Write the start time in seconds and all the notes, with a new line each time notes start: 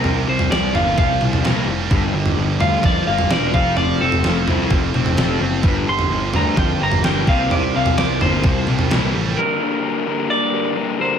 Already playing: F3 F4 A#4
0.03 C2 C3 G3, floor tom
0.27 C2 C3 F3 G3 C5
0.39 floor tom
0.50 C2 C3 F3 G3 D5, snare
0.73 G1 C3 G3 A#3 F4 F5, floor tom
0.97 C2 C3 F3 G3 F5, kick, floor tom
1.21 C2 C3 G3, mid tom
1.33 floor tom
1.43 C2 C3 G3 A#3 A#4, snare, mid tom
1.67 F1 C3 G3
1.90 G1 G2 D3 G3 F4 A#4 D5, kick, floor tom
2.14 G1 G2 D3
2.26 floor tom
2.37 G1 G2 D3 F3
2.60 D2 G2 D3 G3 F4 F5, floor tom
2.83 F2 G2 D3 F3 D5, kick, floor tom
3.07 G1 G2 D3 A#3 F5
3.18 floor tom
3.30 E1 G2 D3 G3 A#4 D5, snare
3.53 F1 F3 C4 E4 F4 A4 C5 F5, kick
3.76 F1 F3 C4 D5, floor tom
4.01 F1 F3 C4 A4
4.12 floor tom
4.24 F1 F3 C4, snare
4.47 C2 F3 C4 E4 F4, floor tom
4.70 F1 F3 C4, kick, floor tom
4.94 F1 F3 C4, mid tom
5.06 floor tom
5.17 F1 F3 C4 F4 A4, snare, mid tom
5.40 F#1 F3 C4
5.63 G1 G2 D3 G3 D4 G4 A#4, kick, floor tom
5.88 G1 G2 D3 C6
5.99 floor tom
6.11 G1 G2 D3 F3
6.34 D2 G2 D3 G3 F4 A#5, floor tom
6.56 F2 G2 D3 F3 G5, kick, floor tom
6.81 G1 G2 D3 A#3 A#5
6.92 floor tom
7.04 G1 G2 D3 G3 A#4 G5, snare
7.27 C2 C3 G3 A#3 C4 F5, kick
7.51 C2 C3 G3 D5, floor tom
7.74 C2 C3 F3 G3 F5
7.86 floor tom
7.97 C2 C3 F3 G3 D5, snare
8.21 G1 C3 G3 A#3 F4 C5, floor tom
8.43 C2 C3 F3 G3, kick, floor tom
8.67 C2 C3 G3, mid tom
8.79 floor tom
8.91 C2 C3 G3 A#3 A#4, snare, mid tom
9.14 A1 C3 G3
9.37 G2 D3 G3 A#3 D4 G4 A#4
9.60 G2 D3 G3 A#3 D4 A#4
9.83 G2 D3 G3 A#3 D4 A#4
10.06 G2 D3 G3 A#3 D4 A#4
10.29 G2 D3 G3 A#3 D4 A#4 D5
10.53 G2 D3 G3 A#3 D4 A#4
10.76 G2 D3 G3 A#3 D4 A#4
10.99 G2 D3 G3 A#3 D4 A#4 C5